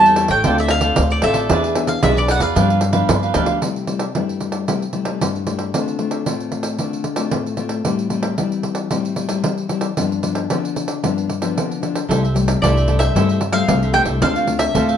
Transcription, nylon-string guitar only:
Already playing: E3 G3 C#4 E4
0.45 D3 C4 F4 A4
0.82 C4 F4 A4
0.98 A2
1.23 C4 F4 A4
1.50 E3 B3 D4 G#4
1.75 B3 D4 G#4
2.02 B2 B3 D4 G#4
2.56 G2 F3 B3 D4
2.93 F3 B3 D4
3.09 D3
3.35 F3 B3 D4
3.62 C3 G3 A3 E4
3.87 G3 A3 E4
4.16 G2 G3 A3 E4
4.69 C3 G3 A3 E4
4.94 G3 A3 E4
5.07 G3 A3 E4
5.22 G2
5.47 G3 A3 E4
5.75 D3 A3 C4 F4
5.99 A3 C4 F4
6.27 A2 A3 C4 F4
6.80 D3 A3 C4 F4
7.17 A3 C4 F4
7.33 A2
7.58 A3 C4 F4
7.85 A2 G3 C4 E4
8.11 G3 C4 E4
8.38 E3 G3 C4 E4
8.91 A2 G3 C4 E4
9.17 G3 C4 E4
9.29 G3 C4 E4
9.44 E3
9.70 G3 C4 E4
9.98 G2 F3 B3 D4
10.23 F3 B3 D4
10.51 D3 F3 B3 D4
11.03 G2 F3 B3 D4
11.41 F3 B3 D4
11.57 D3
11.81 F3 B3 D4
12.09 C3 G3 A3 E4
12.34 G3 A3 E4
12.62 G2 G3 A3 E4
13.15 C3 G3 A3 E4
13.52 G3 A3 E4
13.67 G2 G3 A3 E4
13.93 G3 A3 E4
14.21 D3 A3 C4 F4
14.35 A3 C4 F4
14.46 A3 C4 F4
14.74 A2 A3 C4 F4

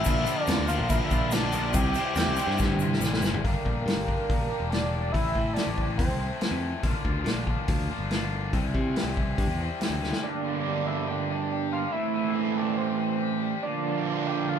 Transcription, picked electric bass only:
0.06 A#1
0.48 F2
0.58 D2
0.79 A#1
1.11 A#1
1.41 A#1
1.53 A#1
1.74 C2
2.16 E2
2.26 C2
2.47 G2
3.01 A1
3.21 G1
3.44 G1
3.65 A#1
3.86 G2
3.96 G1
4.29 A#1
4.60 E1
5.14 A1
5.35 A2
5.67 A1
5.99 E2
6.08 C2
6.51 F2
6.83 A#1
7.05 D2
7.24 A#2
7.35 A#1
7.68 D2
7.99 G1
8.53 C2
8.74 C3
9.04 C2
9.38 G2
9.47 E2
9.90 D2

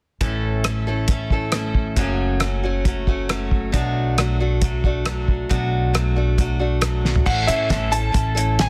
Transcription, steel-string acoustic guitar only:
0.21 A2 E3 A3 C#4 E4 A4
0.67 A4
0.87 A3 C#4 E4 A4
1.10 A3 C#4 E4 A4
1.32 A3 C#4 E4 A4
1.53 A3 C#4 E4 A4
1.98 F#2 C#3 F#3 A3 C#4 F#4
2.42 A3 C#4 F#4
2.63 F#3 A3 C#4 F#4
2.86 F#3 A3 C#4 F#4
3.08 F#3 A3 C#4 F#4
3.29 F#3 A3 C#4 F#4
3.72 B2 F#3 A3 D4 F#4
4.18 F#3 A3 D4 F#4
4.40 A3 D4 F#4
4.62 F#3 A3 D4 F#4
4.85 A3 D4 F#4
5.06 F#3 A3 D4 F#4
5.49 B2 F#3 A3 D4 F#4
5.93 F#3 A3 D4 F#4
6.16 A3 D4 F#4
6.38 F#3 A3 D4 F#4
6.59 A3 D4 F#4
6.81 F#3 A3 D4 F#4
7.26 A2 E3 A3 C#4 E4 A4
7.47 A2 E3 A3 C#4 E4 A4
7.69 A2 E3 A3 C#4 E4 A4
7.91 A3 C#4 E4 A4
8.12 A3 C#4 E4 A4
8.35 A3 C#4 E4 A4

